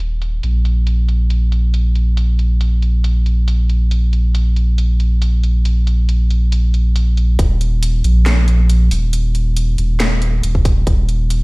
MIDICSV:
0, 0, Header, 1, 3, 480
1, 0, Start_track
1, 0, Tempo, 434783
1, 479, Time_signature, 4, 2, 24, 8
1, 12623, End_track
2, 0, Start_track
2, 0, Title_t, "Sub bass"
2, 0, Program_c, 0, 38
2, 0, Note_on_c, 0, 27, 86
2, 456, Note_off_c, 0, 27, 0
2, 477, Note_on_c, 0, 34, 88
2, 8136, Note_off_c, 0, 34, 0
2, 8159, Note_on_c, 0, 27, 100
2, 8861, Note_off_c, 0, 27, 0
2, 8877, Note_on_c, 0, 34, 100
2, 9820, Note_off_c, 0, 34, 0
2, 9839, Note_on_c, 0, 27, 95
2, 10781, Note_off_c, 0, 27, 0
2, 10799, Note_on_c, 0, 27, 100
2, 11501, Note_off_c, 0, 27, 0
2, 11519, Note_on_c, 0, 27, 98
2, 11981, Note_off_c, 0, 27, 0
2, 11999, Note_on_c, 0, 27, 102
2, 12623, Note_off_c, 0, 27, 0
2, 12623, End_track
3, 0, Start_track
3, 0, Title_t, "Drums"
3, 239, Note_on_c, 9, 42, 46
3, 349, Note_off_c, 9, 42, 0
3, 478, Note_on_c, 9, 42, 71
3, 589, Note_off_c, 9, 42, 0
3, 718, Note_on_c, 9, 42, 46
3, 829, Note_off_c, 9, 42, 0
3, 957, Note_on_c, 9, 42, 73
3, 1068, Note_off_c, 9, 42, 0
3, 1198, Note_on_c, 9, 42, 46
3, 1308, Note_off_c, 9, 42, 0
3, 1438, Note_on_c, 9, 42, 71
3, 1548, Note_off_c, 9, 42, 0
3, 1679, Note_on_c, 9, 42, 48
3, 1789, Note_off_c, 9, 42, 0
3, 1919, Note_on_c, 9, 42, 70
3, 2029, Note_off_c, 9, 42, 0
3, 2158, Note_on_c, 9, 42, 48
3, 2268, Note_off_c, 9, 42, 0
3, 2398, Note_on_c, 9, 42, 73
3, 2508, Note_off_c, 9, 42, 0
3, 2638, Note_on_c, 9, 42, 47
3, 2748, Note_off_c, 9, 42, 0
3, 2878, Note_on_c, 9, 42, 73
3, 2989, Note_off_c, 9, 42, 0
3, 3118, Note_on_c, 9, 42, 48
3, 3228, Note_off_c, 9, 42, 0
3, 3358, Note_on_c, 9, 42, 72
3, 3469, Note_off_c, 9, 42, 0
3, 3599, Note_on_c, 9, 42, 49
3, 3710, Note_off_c, 9, 42, 0
3, 3839, Note_on_c, 9, 42, 74
3, 3949, Note_off_c, 9, 42, 0
3, 4079, Note_on_c, 9, 42, 48
3, 4190, Note_off_c, 9, 42, 0
3, 4319, Note_on_c, 9, 42, 78
3, 4429, Note_off_c, 9, 42, 0
3, 4559, Note_on_c, 9, 42, 51
3, 4669, Note_off_c, 9, 42, 0
3, 4799, Note_on_c, 9, 42, 77
3, 4909, Note_off_c, 9, 42, 0
3, 5039, Note_on_c, 9, 42, 51
3, 5149, Note_off_c, 9, 42, 0
3, 5279, Note_on_c, 9, 42, 75
3, 5389, Note_off_c, 9, 42, 0
3, 5519, Note_on_c, 9, 42, 52
3, 5629, Note_off_c, 9, 42, 0
3, 5759, Note_on_c, 9, 42, 75
3, 5870, Note_off_c, 9, 42, 0
3, 6000, Note_on_c, 9, 42, 52
3, 6111, Note_off_c, 9, 42, 0
3, 6241, Note_on_c, 9, 42, 79
3, 6351, Note_off_c, 9, 42, 0
3, 6481, Note_on_c, 9, 42, 52
3, 6591, Note_off_c, 9, 42, 0
3, 6721, Note_on_c, 9, 42, 79
3, 6831, Note_off_c, 9, 42, 0
3, 6961, Note_on_c, 9, 42, 52
3, 7071, Note_off_c, 9, 42, 0
3, 7200, Note_on_c, 9, 42, 80
3, 7310, Note_off_c, 9, 42, 0
3, 7441, Note_on_c, 9, 42, 53
3, 7551, Note_off_c, 9, 42, 0
3, 7680, Note_on_c, 9, 42, 78
3, 7790, Note_off_c, 9, 42, 0
3, 7919, Note_on_c, 9, 42, 51
3, 8030, Note_off_c, 9, 42, 0
3, 8158, Note_on_c, 9, 36, 123
3, 8160, Note_on_c, 9, 42, 80
3, 8269, Note_off_c, 9, 36, 0
3, 8270, Note_off_c, 9, 42, 0
3, 8400, Note_on_c, 9, 42, 55
3, 8511, Note_off_c, 9, 42, 0
3, 8640, Note_on_c, 9, 42, 85
3, 8750, Note_off_c, 9, 42, 0
3, 8880, Note_on_c, 9, 42, 58
3, 8991, Note_off_c, 9, 42, 0
3, 9120, Note_on_c, 9, 38, 123
3, 9120, Note_on_c, 9, 42, 80
3, 9230, Note_off_c, 9, 38, 0
3, 9230, Note_off_c, 9, 42, 0
3, 9360, Note_on_c, 9, 42, 55
3, 9470, Note_off_c, 9, 42, 0
3, 9599, Note_on_c, 9, 42, 84
3, 9710, Note_off_c, 9, 42, 0
3, 9839, Note_on_c, 9, 46, 94
3, 9950, Note_off_c, 9, 46, 0
3, 10080, Note_on_c, 9, 42, 84
3, 10190, Note_off_c, 9, 42, 0
3, 10320, Note_on_c, 9, 42, 52
3, 10431, Note_off_c, 9, 42, 0
3, 10560, Note_on_c, 9, 42, 86
3, 10671, Note_off_c, 9, 42, 0
3, 10800, Note_on_c, 9, 42, 55
3, 10910, Note_off_c, 9, 42, 0
3, 11040, Note_on_c, 9, 38, 122
3, 11040, Note_on_c, 9, 42, 80
3, 11150, Note_off_c, 9, 38, 0
3, 11150, Note_off_c, 9, 42, 0
3, 11280, Note_on_c, 9, 42, 56
3, 11391, Note_off_c, 9, 42, 0
3, 11520, Note_on_c, 9, 42, 80
3, 11630, Note_off_c, 9, 42, 0
3, 11647, Note_on_c, 9, 36, 63
3, 11757, Note_off_c, 9, 36, 0
3, 11759, Note_on_c, 9, 36, 112
3, 11760, Note_on_c, 9, 46, 92
3, 11869, Note_off_c, 9, 36, 0
3, 11870, Note_off_c, 9, 46, 0
3, 11999, Note_on_c, 9, 36, 126
3, 11999, Note_on_c, 9, 42, 80
3, 12110, Note_off_c, 9, 36, 0
3, 12110, Note_off_c, 9, 42, 0
3, 12240, Note_on_c, 9, 42, 51
3, 12350, Note_off_c, 9, 42, 0
3, 12479, Note_on_c, 9, 42, 79
3, 12590, Note_off_c, 9, 42, 0
3, 12623, End_track
0, 0, End_of_file